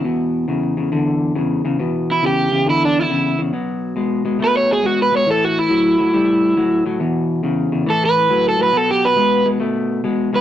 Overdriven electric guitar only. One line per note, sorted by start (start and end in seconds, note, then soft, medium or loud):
2.12 2.24 E4 medium
2.26 2.67 G4 medium
2.70 2.82 E4 medium
2.85 2.97 D4 medium
3.01 3.40 E4 medium
4.44 4.56 B4 medium
4.57 4.70 C#5 medium
4.72 4.86 G#4 medium
4.86 4.99 F#4 medium
5.02 5.14 B4 medium
5.17 5.28 C#5 medium
5.31 5.45 A4 medium
5.45 5.59 F#4 medium
5.59 6.83 E4 medium
7.90 8.02 A4 loud
8.06 8.45 B4 loud
8.49 8.61 A4 medium
8.63 8.77 B4 medium
8.77 8.89 A4 medium
8.91 9.03 G4 medium
9.05 9.46 B4 medium
10.36 10.41 B4 medium